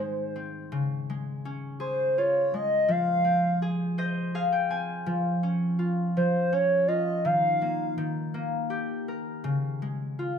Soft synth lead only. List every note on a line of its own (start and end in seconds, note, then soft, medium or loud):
0.00 0.35 C5 medium
1.80 2.19 C5 medium
2.18 2.56 C#5 medium
2.55 2.92 D#5 medium
2.91 3.63 F5 loud
6.17 6.55 C5 medium
6.54 6.89 C#5 medium
6.87 7.24 D#5 medium
7.25 7.94 F5 loud